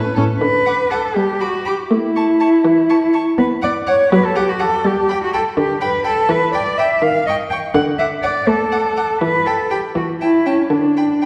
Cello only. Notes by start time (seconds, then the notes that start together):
0.16 A2
0.41 B4
0.91 A4
1.15 G4
1.40 F#4
1.66 G4
1.90 E4
3.38 B4
3.64 D5
3.88 C#5
4.12 B4
4.25 A4
4.36 G4
4.49 F#4
4.61 A4
4.86 G4
5.23 F#4
5.34 A4
5.58 G4
5.82 B4
6.05 A4
6.30 B4
6.54 D5
6.78 E5
7.02 F5
7.26 D#5
7.50 G5
7.74 F#5
7.98 E5
8.23 D5
8.48 A4
9.21 B4
9.46 A4
9.71 G4
9.97 F#4
10.21 E4
10.46 C#4
10.72 D4